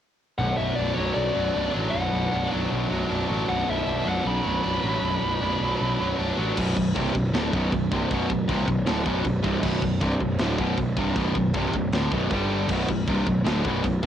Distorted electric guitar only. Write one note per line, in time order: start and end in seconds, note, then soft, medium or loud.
0.38 1.92 B1 medium
0.58 2.11 B2 medium
0.78 1.53 D4 medium
0.97 1.34 F#3 medium
1.16 2.13 F#2 medium
1.34 1.72 F#3 medium
1.53 2.31 D4 medium
1.72 2.51 F#3 medium
1.92 3.47 B1 medium
2.11 3.66 B2 medium
2.32 3.09 D4 medium
2.52 2.90 F#3 medium
2.71 3.68 F#2 medium
2.90 3.28 F#3 medium
3.10 3.86 D4 medium
3.29 4.05 F#3 medium
3.48 5.02 B1 medium
3.66 5.22 B2 medium
3.86 4.62 D4 medium
4.05 4.42 F#3 medium
4.23 5.21 F#2 medium
4.42 4.81 F#3 medium
4.63 5.40 D4 medium
4.82 5.62 F#3 medium
5.03 5.99 B1 medium
5.22 6.19 B2 medium
5.41 6.17 D4 medium
5.63 5.98 F#3 medium
5.81 6.56 F#2 medium
6.00 6.37 F#3 medium
6.18 6.57 D4 medium
6.38 6.57 F#3 medium
6.56 6.75 B1 medium
6.56 6.75 F#2 medium
6.56 6.76 B2 loud
6.76 6.92 B1 medium
6.76 6.92 F#2 medium
6.95 7.14 C2 medium
6.95 7.14 G2 medium
6.95 7.15 C3 loud
7.15 7.30 B1 medium
7.15 7.31 F#2 medium
7.33 7.52 D2 medium
7.33 7.53 A2 medium
7.33 7.53 D3 loud
7.53 7.72 B1 medium
7.53 7.72 F#2 medium
7.53 7.73 B2 loud
7.74 7.89 B1 medium
7.74 7.89 F#2 medium
7.92 8.10 C2 medium
7.92 8.10 G2 medium
7.92 8.11 C3 medium
8.12 8.30 B1 medium
8.12 8.29 F#2 medium
8.12 8.31 B2 loud
8.30 8.46 B1 medium
8.30 8.46 F#2 medium
8.48 8.66 C2 medium
8.48 8.67 G2 loud
8.48 8.68 C3 loud
8.67 8.83 B1 medium
8.67 8.83 F#2 medium
8.86 9.04 D2 medium
8.86 9.04 A2 medium
8.86 9.05 D3 medium
9.04 9.23 B1 loud
9.04 9.23 F#2 medium
9.04 9.25 B2 loud
9.24 9.40 B1 medium
9.24 9.40 F#2 medium
9.43 9.61 C2 medium
9.43 9.61 G2 medium
9.43 9.62 C3 loud
9.61 9.80 B1 medium
9.61 9.81 F#2 loud
9.61 9.82 B2 loud
9.81 9.98 B1 medium
9.81 9.98 F#2 medium
10.00 10.20 C2 medium
10.00 10.20 G2 loud
10.00 10.21 C3 loud
10.21 10.37 B1 medium
10.21 10.37 F#2 medium
10.40 10.57 D2 loud
10.40 10.58 A2 loud
10.40 10.59 D3 loud
10.58 10.76 B1 medium
10.58 10.76 F#2 loud
10.58 10.78 B2 loud
10.77 10.93 B1 medium
10.77 10.93 F#2 medium
10.97 11.15 C2 medium
10.97 11.16 G2 loud
10.97 11.17 C3 medium
11.16 11.35 B1 medium
11.16 11.35 F#2 loud
11.16 11.36 B2 loud
11.37 11.52 B1 medium
11.37 11.52 F#2 medium
11.55 11.73 C2 medium
11.55 11.74 G2 loud
11.55 11.74 C3 loud
11.75 11.90 B1 medium
11.75 11.90 F#2 medium
11.94 12.12 D2 medium
11.94 12.13 A2 medium
11.94 12.13 D3 loud
12.13 12.33 B1 medium
12.13 12.34 F#2 medium
12.13 12.34 B2 medium
12.33 12.70 G2 medium
12.33 12.70 D3 medium
12.33 12.71 G3 medium
12.70 12.88 B1 medium
12.70 12.89 F#2 loud
12.70 12.89 B2 loud
12.89 13.04 B1 medium
12.89 13.05 F#2 medium
13.07 13.26 C2 medium
13.07 13.26 G2 medium
13.07 13.27 C3 medium
13.27 13.42 B1 medium
13.27 13.42 F#2 medium
13.44 13.64 D2 medium
13.44 13.65 A2 medium
13.44 13.65 D3 medium
13.65 13.84 B1 medium
13.65 13.84 F#2 medium
13.65 13.85 B2 loud
13.85 14.00 B1 medium
13.85 14.00 F#2 medium
14.03 14.06 C2 medium